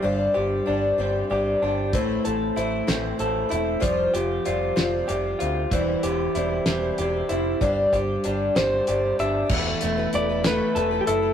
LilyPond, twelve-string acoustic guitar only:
\new Staff \with { instrumentName = "Twelve-string acoustic guitar" } { \time 6/8 \key g \mixolydian \tempo 4. = 63 <g d' g' c''>8 <d' g' c''>8 <g d' g' c''>8 <g d' g' c''>8 <g d' g' c''>8 <d' g' c''>8 | <a, e a c' e' c''>8 <a c' e' c''>8 <a c' e' c''>8 <a, e a c' e' c''>8 <a c' e' c''>8 <a c' e' c''>8 | <f g c' f' c''>8 <c' f' c''>8 <g c' f' c''>8 <f g c' f' c''>8 <g c' f' c''>8 <c' f' c''>8 | <e g c' e' c''>8 <c' e' c''>8 <g c' e' c''>8 <e g c' e' c''>8 <g c' e' c''>8 <c' e' c''>8 |
<g d' g' c''>8 <d' g' c''>8 <g d' g' c''>8 <g d' g' c''>8 <g d' g' c''>8 <d' g' c''>8 | <e a e' a' b'>8 <a e' a' b'>16 <e' a' b'>8 <e' a' b'>16 <e a e' a' b'>8 <a e' a' b'>16 <e' a' b'>8 <e' a' b'>16 | }